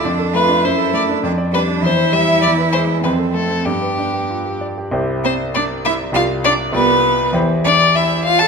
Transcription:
X:1
M:2/4
L:1/16
Q:1/4=100
K:C
V:1 name="Violin"
z2 B2 c2 d2 | z2 B2 c2 e2 | d2 c2 B2 A2 | G6 z2 |
z2 c2 d2 e2 | f2 d2 B4 | z2 d2 e2 f a |]
V:2 name="Grand piano"
F,, A A, D ^F,, A A, D | F,, d G, D E,, c G, E | E,, B ^G, E F,, A A, C | G,, B D G F G d G |
[C,,EGc]8 | [C,,FGd]4 [C,,FGd]4 | [E,,EGc]8 |]
V:3 name="Cello"
D2 F2 E4 | D2 D2 E4- | E4 C4 | B,6 z2 |
z2 C2 D2 E2 | F2 D2 B,4 | z2 D2 E2 F A |]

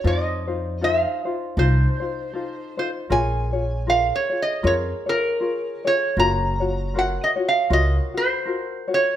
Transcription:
X:1
M:4/4
L:1/8
Q:"Swing" 1/4=78
K:Bbm
V:1 name="Resonator guitar played with a steel bar"
e2 f2 c3 c | a2 (3f d e d B2 d | b2 (3g e f e c2 d |]
V:2 name="Ukulele"
[EF=Ac] [EFc] [EFAc] [EFc] [EFAc] [EFc] [EFAc] [EFc] | [FABd] [FAd] [FABd] [FAd] [FABd] [FAd] [FABd] [FAd] | [FGBd] [FGd] [FGBd] [FGd] [FGBd] [FG] [FGB] [FGd] |]
V:3 name="Upright bass" clef=bass
F,,4 C,, z3 | B,,,4 F,, z3 | G,,,4 D,, z3 |]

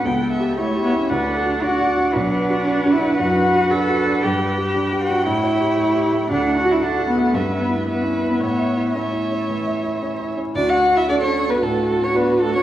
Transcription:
X:1
M:4/4
L:1/16
Q:1/4=115
K:D
V:1 name="Violin"
g2 e2 e4 f4 f4 | f16 | g16 | f4 f4 e4 e4 |
e4 e8- e2 z2 | d f2 e d c2 B A3 c B2 A c |]
V:2 name="Viola"
A4 c4 B2 A2 d4 | B16- | B8 c8 | A4 A4 B4 B4 |
c4 c8- c2 z2 | F4 A4 F8 |]
V:3 name="Grand piano"
(3C,,2 A2 G2 (3E2 G2 E2 (3D,,2 A2 F2 (3D2 F2 D2 | (3B,,,2 B2 F2 (3D2 F2 D2 (3F,,2 B2 F2 (3D2 F2 D2 | (3G,,2 B2 G2 (3D2 G2 D2 (3A,,2 c2 G2 (3A,2 G2 A,2 | (3D,,2 d2 F2 (3A,2 F2 A,2 (3G,,2 e2 E2 (3B,2 E2 B,2 |
(3A,,2 e2 E2 (3C2 E2 C2 (3E,2 e2 E2 (3C2 E2 C2 | D,,4 [DFd]4 A,,4 [DFd]4 |]
V:4 name="Cello"
B,4 A,2 B, C D4 F4 | D6 E2 F4 A4 | G6 F2 E8 | D2 F E D2 B,2 C2 B, A, B, C2 B, |
B,4 A,8- A,2 z2 | D F2 E D C2 B, A,3 C B,2 A, C |]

